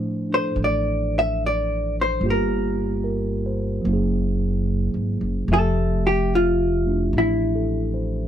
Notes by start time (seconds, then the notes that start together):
Already playing: A2 F3 D4 E4 A4 C5
0.30 D4 A4
0.34 C5
0.56 A1
0.64 D5
1.19 E5
1.46 D5
2.01 C5
2.20 G1 G3 A#3 F4
2.26 G4
2.30 A#4
3.04 A#4
3.46 C5
3.82 F#1 F#3 A#3
3.89 E4
3.93 G#4
4.94 G#1
5.21 F#1
5.48 F1 F3 A3 E5
5.52 G4 A4
6.07 G4
6.35 F4
6.86 A3 D4 E4
7.13 A1
7.18 E4
7.55 A4
7.94 C5